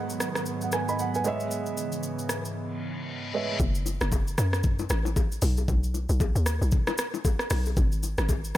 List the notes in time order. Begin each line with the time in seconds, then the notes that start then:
Already playing: G#2 D#3 F#3 G#3 B3 G#4 B4 D#5 F#5
0.10 shaker
0.20 cross-stick, shaker
0.35 cross-stick, shaker
0.46 shaker
0.61 F#5, shaker
0.72 B4 G#5, cross-stick, shaker
0.89 D#5 B5, shaker
0.99 F#5, shaker
1.14 B4 G#5, shaker
1.24 C#3 E3 G#3 G#4 B4 C#5 D#5 E5, shaker
1.40 shaker
1.51 shaker
1.66 shaker
1.77 shaker
1.92 shaker
2.03 shaker
2.19 shaker
2.29 cross-stick, shaker
2.45 shaker
2.55 reverse cymbal
3.34 G#3 G#4 B4 C#5 D#5 E5
3.60 F#1, kick, low conga, shaker
3.75 shaker
3.86 low bongo, shaker
4.01 F#1, cross-stick, shaker
4.12 kick, high bongo, shaker
4.27 shaker
4.38 F#2, cross-stick, shaker
4.53 cross-stick, shaker
4.63 kick, low conga, shaker
4.79 low bongo, shaker
4.90 A1, cross-stick, shaker
5.05 low bongo, shaker
5.16 kick, high bongo, shaker
5.32 shaker
5.42 B1, open hi-hat, low conga, shaker
5.57 high bongo, shaker
5.68 B1, kick, low conga, shaker
5.83 shaker
5.94 low bongo, shaker
6.09 B1, shaker
6.20 kick, high bongo, shaker
6.35 D#2, shaker
6.46 cross-stick, shaker
6.61 B1, shaker
6.71 kick, low conga, shaker
6.87 cross-stick, low bongo, shaker
6.98 cross-stick, shaker
7.14 low bongo, shaker
7.25 kick, high bongo, shaker
7.39 cross-stick, shaker
7.50 B1, cross-stick, open hi-hat, low conga, shaker
7.66 high bongo, shaker
7.77 G#1, kick, low conga, shaker
7.92 shaker
8.03 low bongo, shaker
8.18 G#1, cross-stick, shaker
8.29 kick, high bongo, shaker
8.44 shaker